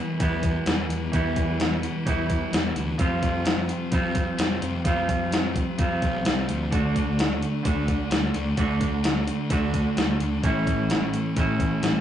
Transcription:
Already playing: E2 E3 G3 B3 E4
0.00 B2
0.19 E2 E3 G3 B3, kick, closed hi-hat
0.23 E4
0.43 kick, closed hi-hat
0.66 E2 B2 E3, snare, closed hi-hat
0.89 E2 B2 E3, closed hi-hat
1.12 E2 B2 E3 G3 B3 E4, kick, closed hi-hat
1.36 B2 E3, kick, closed hi-hat
1.60 E2 B2 E3, snare, closed hi-hat
1.83 B2 E3, closed hi-hat
2.05 E2 E3 G3 B3 E4, kick, closed hi-hat
2.30 kick, closed hi-hat
2.52 E2 B2 E3, snare, closed hi-hat
2.75 D2 B2 E3, closed hi-hat
2.98 F2 C3 F3 G3 C4 F4, kick, closed hi-hat
3.22 C3 F3, kick, closed hi-hat
3.44 F2 C3 F3, snare, closed hi-hat
3.68 C3 F3, closed hi-hat
3.91 F2 F3 G3 C4 F4, kick, closed hi-hat
4.15 kick, closed hi-hat
4.38 F2 C3 F3, snare, closed hi-hat
4.61 F2 C3 F3, closed hi-hat
4.84 F2 C3 F3 G3 C4 F4, kick, closed hi-hat
5.08 C3 F3, kick, closed hi-hat
5.32 F2 C3 F3, snare, closed hi-hat
5.55 C3 F3, kick, closed hi-hat
5.78 F2 F3 G3 C4 F4, kick, closed hi-hat
6.02 B1, kick, closed hi-hat
6.25 C2 F2 C3 F3, snare, closed hi-hat
6.48 D2 C3 F3, closed hi-hat
6.71 D2 D3 A3 D4 F#4, kick, closed hi-hat
6.95 A3 D4, kick, closed hi-hat
7.19 D3 A3 D4, snare, closed hi-hat
7.41 A3 D4, closed hi-hat
7.63 D2 D3 A3 D4 F#4, kick, closed hi-hat
7.88 kick, closed hi-hat
8.10 D2 D3 A3 D4, snare, closed hi-hat
8.33 D2 A3 D4, closed hi-hat
8.57 D2 D3 A3 D4 F#4, kick, closed hi-hat
8.81 A3 D4, kick, closed hi-hat
9.03 D3 A3 D4, snare, closed hi-hat
9.27 A3 D4, closed hi-hat
9.50 D2 D3 A3 D4 F#4, kick, closed hi-hat
9.74 kick, closed hi-hat
9.96 D2 D3 A3 D4, snare, closed hi-hat
10.19 D2 A3 D4, closed hi-hat
10.43 A1 A2 E3 A3 C#4 E4, kick, closed hi-hat
10.66 E3 A3, kick, closed hi-hat
10.89 A2 E3 A3, snare, closed hi-hat
11.12 E3 A3, closed hi-hat
11.36 A1 A2 E3 A3 C#4 E4, kick, closed hi-hat
11.60 kick, closed hi-hat
11.82 A1 A2 E3 A3, snare, closed hi-hat

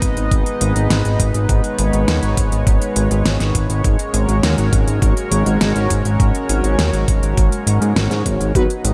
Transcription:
Already playing: G#3 B3 D#4 B4 D#5
0.02 G#1, kick, closed hi-hat
0.17 G#1, closed hi-hat
0.31 G#1, kick, closed hi-hat
0.46 closed hi-hat
0.61 G#1, closed hi-hat
0.76 G#1, closed hi-hat
0.90 G#1, snare, closed hi-hat
1.05 G#1, closed hi-hat
1.20 G#1, kick, closed hi-hat
1.34 G#1, closed hi-hat
1.49 G#1 C#5, kick, closed hi-hat
1.64 closed hi-hat
1.79 G#1, closed hi-hat
1.93 G#1, closed hi-hat
2.08 D#2, snare, closed hi-hat
2.23 G#1, closed hi-hat
2.37 G#1, kick, closed hi-hat
2.52 G#1, closed hi-hat
2.67 G#1, kick, closed hi-hat
2.82 closed hi-hat
2.96 G#1, closed hi-hat
3.11 G#1, closed hi-hat
3.26 G#1, snare, closed hi-hat
3.40 G#1, snare, closed hi-hat
3.55 G#1, kick, closed hi-hat
3.70 G#1, closed hi-hat
3.84 G#1 C#4 F#4 A#4, kick, closed hi-hat
3.99 closed hi-hat
4.14 G#1, closed hi-hat
4.29 G#1, closed hi-hat
4.43 D#2, snare, closed hi-hat
4.58 G#1, closed hi-hat
4.73 G#1, kick, closed hi-hat
4.87 G#1, closed hi-hat
5.02 G#1, kick, closed hi-hat
5.17 closed hi-hat
5.31 G#1, closed hi-hat
5.46 G#1, closed hi-hat
5.61 G#1, snare, closed hi-hat
5.76 G#1, closed hi-hat
5.90 G#1, kick, closed hi-hat
6.05 G#1, closed hi-hat
6.20 G#1, kick, closed hi-hat
6.35 closed hi-hat
6.49 G#1, closed hi-hat
6.64 G#1, closed hi-hat
6.79 D#2, snare, closed hi-hat
6.93 G#1, closed hi-hat
7.08 G#1, kick, closed hi-hat
7.23 G#1, closed hi-hat
7.37 G#1, kick, closed hi-hat
7.52 closed hi-hat
7.67 G#1, closed hi-hat
7.81 G#2, closed hi-hat
7.96 G#1, snare, closed hi-hat
8.11 G#2, snare, closed hi-hat
8.26 G#1, kick, closed hi-hat
8.40 G#1, closed hi-hat
8.55 G#1 F#3 B3 D#4 F#4 B4 D#5, kick, closed hi-hat
8.70 closed hi-hat
8.84 G#1, closed hi-hat

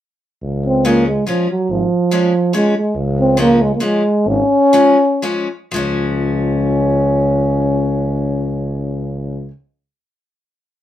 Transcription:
0.42 C#2
0.66 C4
0.85 F3 G#3 A#3 C#4
1.07 G#3
1.27 F3 G#3 C#4
1.50 F#3
1.69 G#1 F3
2.11 F3 G#3 C#4
2.53 F3 G#3 C#4
2.77 G#3
2.95 C#2
3.20 C4
3.37 F3 G#3 A#3 C#4
3.62 G#3
3.75 A#3
3.80 F3 G#3 C#4
4.25 G#1 C#4
4.73 F3 G#3 C#4
5.22 F3 G#3 C#4
5.71 C#2 F3 G#3 C#4
5.76 C#4

